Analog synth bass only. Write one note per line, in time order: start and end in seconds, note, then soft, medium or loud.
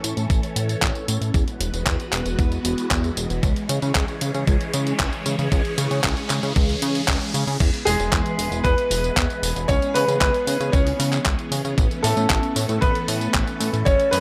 0.04 0.14 A2 medium
0.17 0.27 A2 medium
0.30 0.40 A1 medium
0.56 0.76 A2 medium
0.82 0.92 A1 medium
1.08 1.18 A2 loud
1.21 1.31 A2 medium
1.34 1.44 E2 loud
1.60 1.70 E1 loud
1.73 1.83 E1 medium
1.86 1.96 E2 medium
2.12 2.22 E1 medium
2.25 2.35 E1 medium
2.39 2.58 E2 medium
2.65 2.75 E1 loud
2.91 3.11 E2 loud
3.17 3.27 E1 medium
3.30 3.40 E1 medium
3.43 3.53 C#2 loud
3.69 3.79 C#3 loud
3.82 3.92 C#3 medium
3.95 4.05 C#2 medium
4.22 4.31 C#3 medium
4.35 4.44 C#3 medium
4.47 4.57 C#2 medium
4.74 4.93 C#3 medium
5.00 5.09 C#2 medium
5.26 5.36 C#3 loud
5.39 5.49 C#3 medium
5.52 5.62 C#2 loud
5.78 5.88 C#3 loud
5.91 6.01 C#3 medium
6.04 6.14 C#2 medium
6.30 6.40 C#3 medium
6.43 6.53 C#3 medium
6.56 6.76 C#2 medium
6.82 7.02 C#3 loud
7.08 7.18 C#2 medium
7.34 7.44 C#3 loud
7.47 7.57 C#3 medium
7.60 7.70 E2 loud
7.86 7.96 E1 loud
7.99 8.09 E1 medium
8.12 8.22 E2 medium
8.38 8.48 E1 medium
8.52 8.62 E1 loud
8.65 8.75 E2 medium
8.91 9.10 E1 medium
9.17 9.27 E2 medium
9.43 9.53 E1 loud
9.56 9.66 E1 medium
9.69 9.79 C#2 loud
9.95 10.05 C#3 loud
10.08 10.18 C#3 medium
10.21 10.31 C#2 loud
10.47 10.57 C#3 medium
10.60 10.70 C#3 medium
10.73 10.93 C#2 medium
11.00 11.19 C#3 loud
11.26 11.36 C#2 medium
11.52 11.62 C#3 loud
11.65 11.75 C#3 medium
11.78 11.88 A1 loud
12.04 12.14 A2 loud
12.17 12.27 A2 medium
12.30 12.40 A1 loud
12.56 12.66 A2 medium
12.69 12.79 A2 medium
12.82 12.92 A1 medium
13.08 13.28 A2 medium
13.34 13.44 A1 medium
13.60 13.70 A2 loud
13.73 13.83 A2 medium
13.86 13.96 F#1 loud
14.13 14.20 F#2 loud